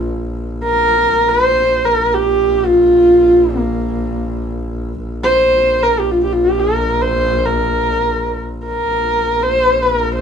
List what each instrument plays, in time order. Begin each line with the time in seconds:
Already playing: double bass A#1
0.64 horsehead fiddle A#4
1.16 double bass A#1
1.29 horsehead fiddle C5
1.85 horsehead fiddle A#4
2.14 horsehead fiddle G4
2.66 horsehead fiddle F4
3.57 horsehead fiddle A#3
5.04 double bass A#1
5.23 horsehead fiddle C5
5.83 horsehead fiddle A#4
5.99 horsehead fiddle G4
6.12 horsehead fiddle F4
6.23 horsehead fiddle G4
6.33 horsehead fiddle F4
6.44 horsehead fiddle G4
6.59 horsehead fiddle A#4
7.02 horsehead fiddle C5
7.46 horsehead fiddle A#4
8.66 horsehead fiddle A#4
8.91 double bass A#1
9.43 horsehead fiddle C5
9.82 horsehead fiddle A#4
10.15 horsehead fiddle C5